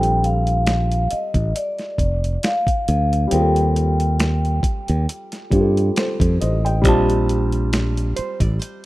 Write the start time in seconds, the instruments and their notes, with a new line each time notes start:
Already playing: fingered electric bass A#1, upright piano G3 C4 F4 A4, vibraphone G5
0.03 closed hi-hat
0.24 vibraphone F5, closed hi-hat
0.47 closed hi-hat
0.67 finger snap, snare, closed hi-hat
0.92 closed hi-hat
1.11 vibraphone D#5, muted fingered electric bass stroke, closed hi-hat
1.34 fingered electric bass A1, kick, closed hi-hat
1.55 vibraphone D5, closed hi-hat
1.79 snare, closed hi-hat
1.98 fingered electric bass F1, kick, closed hi-hat
2.24 closed hi-hat
2.43 vibraphone F5, finger snap, snare, closed hi-hat
2.67 kick, closed hi-hat
2.88 fingered electric bass D2, closed hi-hat
3.13 closed hi-hat
3.27 upright piano G3 C4, vibraphone G5, closed hi-hat
3.32 fingered electric bass D#2, upright piano F4 G#4
3.41 upright piano A4
3.56 closed hi-hat
3.76 closed hi-hat
4.00 closed hi-hat
4.20 finger snap, snare, closed hi-hat
4.45 closed hi-hat
4.63 muted fingered electric bass stroke, kick, closed hi-hat
4.88 fingered electric bass D#2, closed hi-hat
5.09 closed hi-hat
5.32 snare, closed hi-hat
5.50 fingered electric bass G2, upright piano G3 C4 F4 G4, kick, closed hi-hat
5.60 upright piano A4
5.77 closed hi-hat
5.96 upright piano A4 C5, finger snap, snare, closed hi-hat
6.20 fingered electric bass F2, kick, closed hi-hat
6.41 fingered electric bass A1, upright piano C5 D#5, closed hi-hat
6.65 upright piano D#5 G5, closed hi-hat
6.82 fingered electric bass A#1, upright piano G3 C4, kick, closed hi-hat
6.86 upright piano F4 A5
7.10 closed hi-hat
7.29 closed hi-hat
7.52 closed hi-hat
7.73 finger snap, snare, closed hi-hat
7.97 closed hi-hat
8.16 hollow-body jazz guitar C5, muted fingered electric bass stroke, closed hi-hat
8.40 fingered electric bass A1, hollow-body jazz guitar D5, kick, closed hi-hat
8.59 hollow-body jazz guitar C5, closed hi-hat